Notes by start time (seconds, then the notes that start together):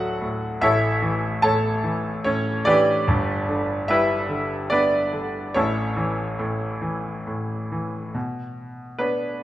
Already playing: D1 D2 A2 D3 F#3 E4 F#4 A4 D5 E5 F#5
0.21 A2
0.61 A1 A2 E4 A4 C#5 E5
1.02 E3
1.42 A2 A4 C#5 A5
1.84 E3
2.24 A2 C#4 C#5
2.65 E3 D4 G4 B4 D5
3.08 G1 G2
3.49 D3
3.88 G3 E4 B4 E5
4.29 D3
4.70 B3 D4 B4 D5
5.13 D3
5.54 A1 A2 C#4 E4 A4 C#5
5.96 E3
6.39 A2
6.82 E3
7.27 A2
7.72 E3
8.14 B2
8.98 B3 D4 B4 C#5